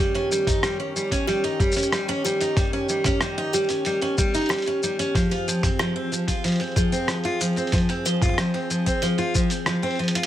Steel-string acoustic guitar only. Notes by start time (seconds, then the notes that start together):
0.00 G3
0.15 C#4
0.32 G3
0.47 D#4
0.64 G3
0.80 C#4
0.96 G3
1.12 C#4
1.28 G3
1.44 D#4
1.60 G3
1.76 C#4
1.93 G3
2.09 C#4
2.25 G3
2.41 D#4
2.57 G3
2.73 C#4
2.89 G3
3.06 C#4
3.22 G3
3.38 D#4
3.54 G3
3.70 C#4
3.86 G3
4.02 C#4
4.18 G3
4.34 D#4
4.51 G3
4.67 C#4
4.83 G3
4.99 C#4
5.15 F3
5.31 F4
5.48 F3
5.64 C4
5.80 F3
5.96 C4
6.12 F3
6.28 F4
6.44 F3
6.61 C4
6.76 F3
6.92 C4
7.09 F3
7.25 F4
7.41 F3
7.57 C4
7.73 F3
7.90 C4
8.06 F3
8.22 F4
8.38 F3
8.54 C4
8.70 F3
8.86 C4
9.02 F3
9.18 F4
9.35 F3
9.51 C4
9.67 F3
9.83 C4
9.99 F3
10.15 F4